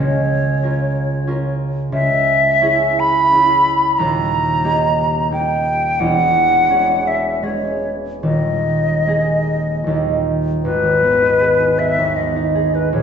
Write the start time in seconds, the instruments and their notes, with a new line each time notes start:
Already playing: harp C#4 F4
0.00 harp C#2 C#3, flute C#5
0.63 harp C#4 F4 A#4
1.27 harp C#4 F4 A#4
1.92 harp C#2 C#3, flute E5
2.62 harp C#4 E4 G#4
3.00 flute B5
3.32 harp C#4 E4
3.37 harp G#4
3.98 harp D#1 D#2, flute A#5
4.64 harp A#3 D#4 G4
5.31 harp A#3 D#4 G4, flute G5
6.00 harp E1 E2, flute F#5
6.69 harp G#3 C#4 G#4
7.07 flute E5
7.43 harp G#3 C#4 G#4, flute C#5
8.23 harp D#1 D#2, flute D#5
9.07 harp A#3 D#4 G#4
9.84 harp D#1 D#2 D#4
9.88 harp A#3 G4
10.64 harp G#1, flute B4
10.83 harp D#2
11.02 harp B3
11.22 harp D#4
11.40 harp G#4
11.60 harp D#4
11.79 harp B3, flute E5
11.98 harp D#2
12.16 harp B3, flute D#5
12.36 harp D#4
12.55 harp G#4
12.75 harp D#4, flute B4
12.93 harp A#1, flute C#5